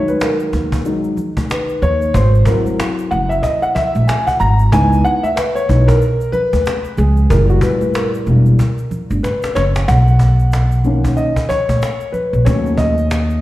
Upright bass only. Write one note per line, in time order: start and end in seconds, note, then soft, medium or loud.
0.53 0.81 D#2 medium
1.82 2.10 D#2 medium
2.14 2.42 G#1 loud
3.11 3.39 F#1 medium
3.95 4.06 A#1 medium
4.40 4.68 G#1 medium
4.72 5.00 C#2 loud
5.69 5.97 B1 medium
6.53 6.64 D#2 medium
6.98 7.26 C#2 loud
7.30 7.58 F#1 loud
8.27 8.55 E1 medium
9.11 9.22 G1 medium
9.56 9.84 F#1 medium
9.88 11.13 B1 loud
11.69 11.80 A#1 medium
12.33 12.44 A#1 medium
12.46 13.41 D#2 loud